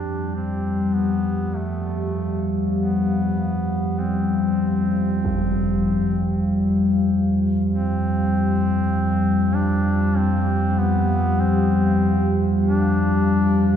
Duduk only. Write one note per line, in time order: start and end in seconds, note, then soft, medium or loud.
0.00 0.34 D4 medium
0.35 0.96 C4 medium
0.94 1.58 B3 medium
1.56 2.52 A3 medium
2.78 4.02 B3 medium
4.00 6.46 C4 medium
7.70 9.56 C4 medium
9.55 10.19 D4 medium
10.18 10.82 C4 medium
10.80 11.42 B3 medium
11.41 12.34 C4 medium
12.65 13.76 D4 medium